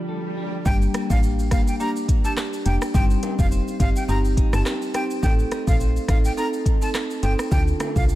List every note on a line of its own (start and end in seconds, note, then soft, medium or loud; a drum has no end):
0.00 1.87 D3 medium
0.00 0.65 F3 medium
0.00 0.72 A3 medium
0.00 0.37 D4 medium
0.00 swell medium
0.09 0.66 A4 medium
0.37 1.80 D4 medium
0.66 0.87 G1 loud
0.66 2.94 G3 medium
0.66 0.80 A#3 medium
0.66 0.80 D4 medium
0.66 0.80 G4 loud
0.66 1.22 G4 medium
0.66 0.76 G5 loud
0.66 kick loud
0.66 shaker medium
0.66 maracas medium
0.82 shaker medium
0.82 maracas soft
0.94 1.50 A#3 medium
0.94 cross-stick loud
0.94 closed hi-hat medium
0.94 shaker medium
0.94 maracas soft
1.10 1.53 A1 medium
1.10 1.21 A#3 medium
1.10 1.21 D4 medium
1.10 1.22 G4 medium
1.10 1.18 F5 medium
1.10 kick loud
1.10 shaker medium
1.10 maracas medium
1.23 2.65 G4 medium
1.23 maracas medium
1.23 shaker medium
1.39 maracas medium
1.39 shaker medium
1.51 1.73 G1 medium
1.51 1.65 A#3 medium
1.51 2.07 A#3 medium
1.51 1.66 D4 medium
1.51 1.66 G4 medium
1.51 1.61 F5 medium
1.51 kick medium
1.51 cross-stick medium
1.51 closed hi-hat medium
1.51 maracas medium
1.51 shaker medium
1.67 1.75 G5 medium
1.67 maracas medium
1.67 shaker medium
1.80 1.94 A#3 medium
1.80 2.36 D4 medium
1.80 1.94 D4 medium
1.80 1.94 G4 loud
1.80 1.90 A#5 medium
1.80 maracas medium
1.80 shaker medium
1.96 shaker medium
1.96 maracas medium
2.08 3.01 A#3 medium
2.08 kick medium
2.08 closed hi-hat medium
2.08 shaker medium
2.25 2.36 A#3 medium
2.25 2.36 D4 medium
2.25 2.36 G4 medium
2.25 2.32 A5 medium
2.25 maracas medium
2.25 shaker medium
2.37 3.01 D4 medium
2.37 cross-stick medium
2.37 clap medium
2.37 shaker medium
2.37 maracas medium
2.53 maracas soft
2.53 shaker medium
2.66 2.78 F1 medium
2.66 2.80 A#3 medium
2.66 2.80 D4 medium
2.66 4.08 G4 medium
2.66 2.80 G4 medium
2.66 2.76 G5 medium
2.66 closed hi-hat medium
2.66 shaker medium
2.66 maracas soft
2.82 cross-stick loud
2.82 shaker medium
2.82 maracas medium
2.94 3.16 G1 loud
2.94 5.23 G3 medium
2.94 3.08 C4 medium
2.94 3.08 D#4 medium
2.94 3.09 G4 loud
2.94 3.51 C5 medium
2.94 3.04 G5 medium
2.94 kick loud
2.94 shaker medium
2.94 maracas medium
3.10 shaker medium
3.10 maracas soft
3.23 3.80 D#4 medium
3.23 closed hi-hat medium
3.23 high timbale medium
3.23 shaker medium
3.23 maracas soft
3.39 3.60 F1 medium
3.39 3.50 C4 medium
3.39 3.50 D#4 medium
3.39 3.50 G4 medium
3.39 3.47 F5 medium
3.39 kick loud
3.39 shaker medium
3.39 maracas medium
3.52 4.94 C5 medium
3.52 maracas medium
3.52 shaker medium
3.68 maracas medium
3.68 shaker medium
3.80 3.92 G1 loud
3.80 3.94 C4 medium
3.80 4.37 D#4 medium
3.80 3.94 D#4 medium
3.80 3.94 G4 medium
3.80 3.90 F5 medium
3.80 kick loud
3.80 closed hi-hat medium
3.80 maracas medium
3.80 shaker medium
3.96 4.04 G5 medium
3.96 maracas medium
3.96 shaker medium
4.08 4.42 G1 loud
4.08 4.23 C4 loud
4.08 4.23 D#4 medium
4.08 4.65 G4 medium
4.08 4.23 G4 loud
4.08 4.19 A#5 medium
4.08 maracas medium
4.08 shaker medium
4.25 maracas medium
4.25 shaker medium
4.37 5.51 D#4 medium
4.37 kick medium
4.37 closed hi-hat medium
4.37 shaker medium
4.53 4.63 G1 loud
4.53 4.64 C4 medium
4.53 4.64 D#4 medium
4.53 4.64 G4 medium
4.53 4.61 A5 medium
4.53 cross-stick loud
4.53 maracas medium
4.53 shaker medium
4.66 5.29 G4 medium
4.66 cross-stick medium
4.66 clap loud
4.66 high timbale soft
4.66 shaker medium
4.66 maracas medium
4.82 maracas soft
4.82 shaker medium
4.94 5.08 C4 medium
4.94 5.08 D#4 medium
4.94 5.09 G4 medium
4.94 5.23 C5 medium
4.94 5.04 G5 medium
4.94 cross-stick medium
4.94 closed hi-hat medium
4.94 shaker medium
4.94 maracas medium
5.10 shaker medium
5.10 maracas medium
5.23 5.45 A1 loud
5.23 7.80 A3 medium
5.23 5.37 C4 medium
5.23 5.37 D#4 medium
5.23 5.37 A4 loud
5.23 5.79 C5 medium
5.23 5.33 G5 loud
5.23 kick loud
5.23 shaker medium
5.23 maracas medium
5.39 shaker medium
5.39 maracas soft
5.51 6.08 D#4 medium
5.51 cross-stick medium
5.51 closed hi-hat medium
5.51 shaker medium
5.51 maracas soft
5.67 5.98 A#1 medium
5.67 5.78 C4 medium
5.67 5.79 D#4 medium
5.67 5.79 A4 medium
5.67 5.75 F5 medium
5.67 kick loud
5.67 shaker medium
5.67 maracas medium
5.80 7.22 C5 medium
5.80 maracas medium
5.80 shaker medium
5.96 maracas medium
5.96 shaker medium
6.08 6.30 A1 medium
6.08 6.23 C4 medium
6.08 6.65 D#4 medium
6.08 6.23 D#4 medium
6.08 6.23 A4 medium
6.08 6.19 F5 medium
6.08 kick loud
6.08 cross-stick medium
6.08 closed hi-hat medium
6.08 shaker medium
6.08 maracas medium
6.25 6.32 G5 medium
6.25 maracas medium
6.25 shaker medium
6.37 6.51 C4 loud
6.37 6.51 D#4 medium
6.37 6.94 A4 medium
6.37 6.51 A4 loud
6.37 6.47 A#5 medium
6.37 maracas medium
6.37 shaker medium
6.53 maracas medium
6.53 shaker medium
6.66 7.58 D#4 medium
6.66 kick medium
6.66 closed hi-hat medium
6.66 shaker medium
6.82 6.93 C4 medium
6.82 6.93 D#4 medium
6.82 6.93 A4 medium
6.82 6.90 A5 medium
6.82 maracas medium
6.82 shaker medium
6.94 7.52 A4 medium
6.94 cross-stick loud
6.94 clap loud
6.94 shaker medium
6.94 maracas medium
7.10 maracas soft
7.10 shaker medium
7.23 7.35 G1 medium
7.23 7.37 C4 medium
7.23 7.37 D#4 medium
7.23 7.37 A4 medium
7.23 7.58 C5 medium
7.23 7.33 G5 medium
7.23 closed hi-hat medium
7.23 maracas medium
7.23 shaker medium
7.39 cross-stick loud
7.39 shaker medium
7.39 maracas medium
7.51 7.73 D2 loud
7.51 8.15 D3 medium
7.51 7.65 D4 medium
7.51 7.66 F4 medium
7.51 7.66 A4 loud
7.51 8.08 A4 medium
7.51 7.61 G5 medium
7.51 kick loud
7.51 shaker medium
7.51 maracas medium
7.68 shaker medium
7.68 maracas soft
7.80 8.15 A3 medium
7.80 cross-stick medium
7.80 closed hi-hat medium
7.80 high timbale medium
7.80 shaker medium
7.80 maracas soft
7.96 8.15 C2 medium
7.96 8.07 D4 medium
7.96 8.07 F4 medium
7.96 8.07 A4 medium
7.96 8.04 F5 medium
7.96 kick loud
7.96 shaker medium
7.96 maracas medium
8.09 8.15 A4 medium
8.09 maracas medium
8.09 shaker medium